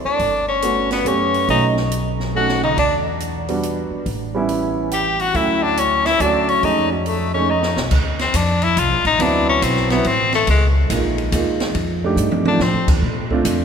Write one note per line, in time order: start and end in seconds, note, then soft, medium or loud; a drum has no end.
0.05 0.45 D4 medium
0.05 0.45 D5 medium
0.05 muted upright bass stroke soft
0.19 1.01 G1 medium
0.19 kick soft
0.19 open hi-hat soft
0.48 0.88 C#4 medium
0.48 0.88 C#5 medium
0.62 1.04 A3 medium
0.62 1.04 B3 soft
0.62 1.04 C#4 soft
0.62 1.05 F#4 medium
0.62 closed hi-hat soft
0.91 1.09 B3 medium
0.91 1.10 B4 medium
0.91 snare soft
0.91 open hi-hat soft
1.05 1.45 F#2 medium
1.05 1.47 A3 medium
1.05 1.49 B3 soft
1.05 1.48 C#4 soft
1.05 1.49 C#4 medium
1.05 1.49 G4 medium
1.05 1.50 C#5 medium
1.05 closed hi-hat soft
1.34 open hi-hat soft
1.48 2.73 B1 medium
1.48 1.74 A3 medium
1.48 1.75 C#4 soft
1.48 1.75 D#4 soft
1.48 1.66 D#4 medium
1.48 1.75 F#4 medium
1.48 1.76 D#5 medium
1.48 kick soft
1.48 open hi-hat soft
1.77 snare soft
1.92 closed hi-hat soft
2.20 snare soft
2.35 2.60 A3 soft
2.35 2.60 C#4 soft
2.35 2.60 D#4 soft
2.35 2.62 F#4 medium
2.35 2.61 A4 medium
2.35 2.62 F#5 medium
2.49 snare soft
2.63 2.77 D#4 medium
2.63 2.77 D#5 medium
2.63 mid tom medium
2.77 3.87 E2 medium
2.77 2.95 D4 medium
2.77 3.04 D5 medium
2.77 kick medium
2.77 ride medium
3.20 closed hi-hat soft
3.48 4.03 G3 medium
3.48 4.03 B3 soft
3.48 4.04 D4 medium
3.48 4.04 F#4 medium
3.48 open hi-hat soft
3.63 closed hi-hat soft
3.90 muted upright bass stroke soft
4.06 5.31 A1 medium
4.06 kick soft
4.06 open hi-hat soft
4.35 4.89 G3 medium
4.35 4.89 B3 medium
4.35 4.90 C#4 medium
4.35 4.90 E4 medium
4.49 open hi-hat soft
4.91 5.23 G4 medium
4.91 5.22 G5 medium
4.91 closed hi-hat soft
5.20 5.37 F#4 medium
5.20 5.37 F#5 medium
5.20 open hi-hat soft
5.34 6.16 D2 medium
5.34 6.00 F#3 soft
5.34 6.00 A3 soft
5.34 6.00 C#4 soft
5.34 5.64 E4 medium
5.34 6.01 E4 medium
5.34 5.65 E5 medium
5.34 kick soft
5.34 open hi-hat soft
5.63 5.81 D4 medium
5.63 5.80 D5 medium
5.77 6.08 C#4 medium
5.77 6.07 C#5 medium
5.77 closed hi-hat soft
6.05 6.23 E4 medium
6.05 6.23 E5 medium
6.05 snare soft
6.05 open hi-hat soft
6.20 6.60 D2 medium
6.20 6.63 F#3 soft
6.20 6.63 A3 soft
6.20 6.63 C#4 soft
6.20 6.51 D4 medium
6.20 6.64 F#4 medium
6.20 6.51 D5 medium
6.20 closed hi-hat soft
6.49 6.66 C#4 medium
6.49 6.66 C#5 medium
6.49 open hi-hat soft
6.63 7.73 F2 medium
6.63 6.89 G#3 soft
6.63 6.89 A3 soft
6.63 6.89 C#4 soft
6.63 6.91 D#4 medium
6.63 6.90 D#4 soft
6.63 6.91 D#5 medium
6.63 kick soft
6.63 open hi-hat soft
6.92 7.08 F#3 soft
6.92 7.08 F#4 soft
7.06 7.33 A3 medium
7.06 7.34 A4 medium
7.06 open hi-hat soft
7.34 7.48 G#3 medium
7.34 7.48 A3 soft
7.34 7.52 C#4 medium
7.34 7.48 C#4 soft
7.34 7.48 D#4 medium
7.34 7.51 C#5 medium
7.49 7.85 D#4 medium
7.49 7.85 D#5 medium
7.63 snare soft
7.77 7.90 B1 medium
7.77 snare medium
7.91 8.33 D2 medium
7.91 kick medium
7.91 crash medium
8.19 8.37 C4 medium
8.19 snare soft
8.19 ride soft
8.34 8.76 F2 medium
8.34 8.65 D4 medium
8.34 kick soft
8.34 hi-hat pedal medium
8.34 ride medium
8.62 8.80 E4 medium
8.62 ride soft
8.77 8.90 C2 medium
8.77 9.06 F4 medium
8.77 kick soft
8.77 hi-hat pedal medium
8.77 ride medium
8.90 9.04 A#1 medium
9.05 9.18 A1 medium
9.05 9.23 D#4 medium
9.05 ride soft
9.19 9.61 D2 medium
9.19 9.85 F#3 medium
9.19 9.85 B3 medium
9.19 9.85 C4 medium
9.19 9.48 D4 medium
9.19 9.86 E4 medium
9.19 kick soft
9.19 ride medium
9.49 9.65 C#4 medium
9.62 10.03 B1 medium
9.62 9.91 C4 medium
9.62 kick soft
9.62 hi-hat pedal medium
9.62 ride medium
9.77 snare soft
9.90 10.04 F#3 medium
9.90 10.09 B3 medium
9.90 10.04 B3 medium
9.90 10.04 C4 medium
9.90 10.04 E4 medium
9.90 snare soft
9.90 ride soft
10.05 10.46 A1 medium
10.05 10.34 C4 medium
10.05 kick soft
10.05 ride medium
10.33 10.47 A3 medium
10.33 snare soft
10.33 ride soft
10.47 10.89 C#2 medium
10.47 10.66 G#3 medium
10.47 kick soft
10.47 ride medium
10.90 11.31 A#1 medium
10.90 11.32 G#3 medium
10.90 11.32 A#3 medium
10.90 11.32 D#4 medium
10.90 11.33 F4 medium
10.90 kick soft
10.90 hi-hat pedal medium
10.90 ride medium
11.18 ride soft
11.32 11.74 D#2 medium
11.32 11.76 G#3 medium
11.32 11.76 A#3 medium
11.32 11.76 D#4 medium
11.32 11.76 F4 medium
11.32 kick soft
11.32 hi-hat pedal medium
11.32 ride medium
11.60 snare medium
11.60 ride soft
11.75 12.16 F2 medium
11.75 kick soft
11.75 ride medium
12.04 12.44 A3 medium
12.04 12.44 D4 medium
12.04 12.44 D#4 medium
12.04 12.44 G4 medium
12.16 12.58 G2 medium
12.16 hi-hat pedal medium
12.31 high tom medium
12.45 12.59 A3 medium
12.45 12.60 D4 medium
12.45 12.64 D4 medium
12.45 12.60 D#4 medium
12.45 12.60 F4 medium
12.45 high tom medium
12.59 12.75 A2 medium
12.59 12.89 C4 medium
12.59 snare soft
12.74 12.87 F2 medium
12.88 13.01 D#2 medium
12.88 kick medium
12.88 crash medium
13.02 13.44 A#2 medium
13.02 kick soft
13.30 13.65 A3 medium
13.30 13.65 C4 medium
13.30 13.65 D4 medium
13.30 13.65 F4 medium
13.30 kick soft
13.45 13.65 F2 medium
13.45 hi-hat pedal medium
13.45 ride medium